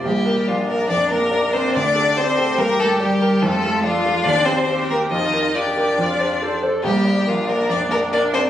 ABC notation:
X:1
M:4/4
L:1/8
Q:1/4=141
K:Bb
V:1 name="Grand piano"
B,,, B d B F,, B d B | D,, A d A G,, B d B | F,, A d A E,, G c G | F,, B F B F,, c A c |
B,,, d B d F,, d B d |]
V:2 name="Violin"
G2 F B d B2 c | d2 c2 B A G2 | A2 F2 d c2 B | e2 d4- d z |
G2 F B d B d c |]
V:3 name="Viola"
B,2 D6- | D2 G6 | F2 D2 C2 G2 | F2 G2 F2 c A |
B,2 D6 |]
V:4 name="Cello"
G,2 F, B, D B,2 C | D2 C2 B, A, G,2 | A,2 F,2 D C2 B, | E2 D4- D z |
G,2 F, B, D B, D C |]